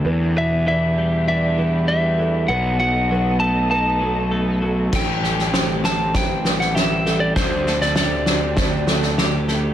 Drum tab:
CC |----------------|----------------|x---------------|----------------|
SD |----------------|----------------|o-ooo-o-o-ooo-o-|o-ooo-o-o-ooo-o-|
BD |----------------|----------------|o-------o-------|o-------o-------|